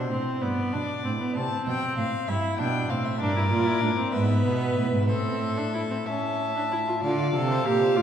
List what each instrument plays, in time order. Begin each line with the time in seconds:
Already playing: cello B2, violin C5
0.10 cello A2, viola C4
0.42 cello G2, viola B3, violin D5
0.73 cello B2, viola D4
1.05 cello A2, viola C4
1.20 viola B3
1.35 cello C3, viola C4, violin A5
1.67 cello B2, violin G5
1.97 cello A2, violin F5
2.28 cello G2, viola E4, violin E5
2.59 cello B2, viola D4, violin G5
2.90 cello A2, viola C4, violin F5
3.05 violin E5
3.20 cello G2, viola D4, violin A#4 D5
3.36 viola E4
3.51 cello A#2, viola F4
3.66 viola E4
3.81 cello A2, viola D4
3.97 viola C4
4.13 cello G#2, viola B3, violin B4 E5
4.46 cello B2
4.77 cello A2
4.93 cello G#2
5.08 cello A2, viola C4, violin A4 E5
5.58 viola D4
5.74 viola E4
5.91 viola C4
6.06 cello A2, viola C#4, violin E5 A5
6.56 viola D4
6.72 viola E4
6.88 viola F4
7.02 cello D3, viola F4, violin D5 F5
7.35 cello C3, viola A4
7.51 violin C5
7.66 cello A#2, viola G4, violin A#4
7.83 violin C5
7.97 cello A2, viola F4, violin D5